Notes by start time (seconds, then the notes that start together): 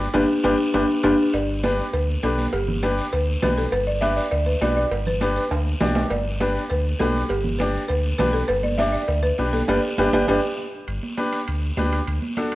Already playing: G4
0.14 G1 D4 G4 B4, high conga, high timbale, long guiro
0.44 G1 D4 G4 B4, high conga, high timbale, long guiro
0.74 G1 D4 G4 B4, high conga, high timbale, long guiro
1.04 G1 D4 G4 B4, high conga, high timbale, long guiro
1.34 G1 D5, cowbell, high conga, long guiro
1.63 D4 G4 B4, cowbell, high conga, short guiro
1.79 short guiro
1.93 D2 B4, cowbell, long guiro
2.09 high conga
2.23 B1 D4 G4 A4 B4, cowbell, high conga, short guiro
2.38 high conga, short guiro
2.53 G1 G4, cowbell, long guiro
2.68 high conga, low conga
2.83 D4 G4 B4, cowbell, high conga, short guiro
2.98 short guiro
3.13 D2 B4, cowbell, long guiro
3.28 high conga
3.42 B1 D4 G4 B4, cowbell, high conga, low conga, low timbale, short guiro
3.57 A4, short guiro
3.72 G1 B4, cowbell, high conga, long guiro
3.87 D5
4.01 D4 G4 B4 E5, cowbell, high conga, short guiro
4.16 D5, short guiro
4.31 D2 D5, cowbell, long guiro
4.46 B4, high conga
4.61 B1 D4 G4 B4 D5, cowbell, high conga, low timbale, short guiro
4.76 D5, short guiro
4.91 G1, cowbell, high conga, long guiro
5.06 B4, low conga
5.21 D4 G4 B4, cowbell, high conga, short guiro
5.36 B4, short guiro
5.51 D2, cowbell, high timbale, long guiro
5.66 high conga
5.81 B1 D4 G4 D5, cowbell, high conga, low conga, low timbale, short guiro
5.95 high conga, low timbale, short guiro
6.11 G1 D5, cowbell, high conga, long guiro
6.40 D4 G4 B4, cowbell, high conga, short guiro
6.56 short guiro
6.69 D2 B4, cowbell, long guiro
6.85 high conga
6.99 B1 D4 G4 A4 B4, cowbell, high conga, low timbale, short guiro
7.15 high conga, short guiro
7.29 G1 G4, cowbell, high conga, long guiro
7.44 high conga, low conga
7.59 D4 G4 B4 D5, cowbell, high conga, short guiro
7.75 short guiro
7.88 D2 B4, cowbell, long guiro
8.04 high conga
8.19 B1 D4 G4 B4, cowbell, high conga, low conga, low timbale, short guiro
8.33 A4, short guiro
8.48 G1 B4, cowbell, high conga, long guiro
8.63 D5, high conga
8.78 D4 G4 D5 E5, cowbell, high conga, short guiro
8.93 D5, short guiro
9.08 D2 D5, cowbell, long guiro
9.23 B4, high conga
9.38 B1 D4 G4 B4, cowbell, high conga, short guiro
9.53 A4, high conga, short guiro
9.68 G1 D4 G4 B4 D5, high conga, high timbale, long guiro
9.98 G1 D4 G4 B4 D5, high conga, high timbale, long guiro
10.13 G1 D4 G4 B4 D5, high conga, high timbale, long guiro
10.28 G1 D4 G4 B4 D5, high conga, high timbale, long guiro
10.88 G1, high timbale, long guiro
11.03 high conga
11.18 D4 G4 B4, high conga, high timbale, short guiro
11.33 high timbale, short guiro
11.48 D2, high timbale, long guiro
11.77 D2 D4 G4 B4, high conga, high timbale, low timbale, short guiro
11.92 high timbale, short guiro
12.07 D2, high timbale, long guiro
12.22 high conga
12.37 D4 F#4 A4, high conga, high timbale, short guiro
12.52 short guiro